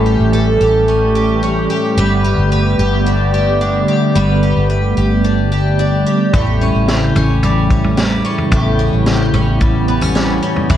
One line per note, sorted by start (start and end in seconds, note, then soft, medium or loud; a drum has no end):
0.00 0.18 A1 medium
0.00 1.97 A2 medium
0.00 1.93 E3 medium
0.00 10.66 G3 medium
0.00 8.47 A3 medium
0.00 0.87 C#4 medium
0.00 1.93 C#4 medium
0.00 6.29 G4 medium
0.00 0.33 A4 medium
0.06 0.60 G4 medium
0.20 0.59 A1 medium
0.33 1.98 A4 medium
0.61 1.66 A1 medium
0.61 1.15 G4 medium
0.88 1.42 C#4 soft
1.15 1.70 G4 medium
1.43 2.03 C#4 medium
1.70 2.24 G4 medium
1.97 2.36 G1 loud
1.97 6.29 D3 medium
1.97 4.15 G3 medium
1.97 6.29 B3 medium
1.97 2.51 B4 medium
2.24 2.79 G4 soft
2.38 2.77 G1 medium
2.52 4.15 B4 medium
2.79 3.84 G1 medium
2.79 3.33 G4 medium
3.06 3.60 D4 medium
3.34 3.88 G4 soft
3.61 5.23 D4 medium
3.88 4.42 G4 soft
4.15 4.54 G1 medium
4.15 6.37 G3 medium
4.15 4.68 B4 medium
4.43 4.97 G4 soft
4.56 4.95 G1 medium
4.70 6.39 B4 medium
4.97 6.02 G1 medium
4.97 5.51 G4 soft
5.24 5.78 D4 medium
5.52 6.06 G4 soft
5.79 6.39 D4 medium
6.07 6.34 G4 medium
6.33 6.73 A1 medium
6.33 8.51 A2 medium
6.33 10.66 C#3 medium
6.33 10.77 E3 medium
6.33 10.77 E4 medium
6.33 6.87 G4 medium
6.33 kick medium
6.33 floor tom loud
6.61 7.15 C#4 soft
6.75 7.14 A1 medium
6.88 8.51 G4 medium
6.88 snare medium
7.16 8.21 A1 medium
7.16 7.69 C#4 medium
7.16 floor tom medium
7.43 7.96 G3 medium
7.43 floor tom medium
7.70 8.23 C#4 soft
7.70 kick medium
7.84 floor tom medium
7.97 9.59 G3 medium
7.97 snare medium
8.25 8.78 C#4 soft
8.38 floor tom medium
8.52 8.91 A1 loud
8.52 10.70 A2 medium
8.52 10.77 B3 medium
8.52 9.05 G4 medium
8.52 kick loud
8.52 floor tom loud
8.79 9.32 C#4 soft
8.93 9.32 A1 medium
9.06 10.70 G4 medium
9.06 snare medium
9.33 10.38 A1 loud
9.33 9.88 C#4 medium
9.33 floor tom medium
9.61 10.14 G3 medium
9.61 kick medium
9.61 floor tom medium
9.88 10.01 B3 soft
10.01 10.41 C#4 medium
10.01 floor tom medium
10.15 10.75 G3 medium
10.15 snare medium
10.43 10.75 C#4 medium
10.56 floor tom medium
10.70 10.77 E1 medium
10.70 10.77 D3 medium
10.70 10.77 E3 medium
10.70 10.77 G#3 medium
10.70 10.77 G#4 medium
10.70 kick medium
10.70 floor tom loud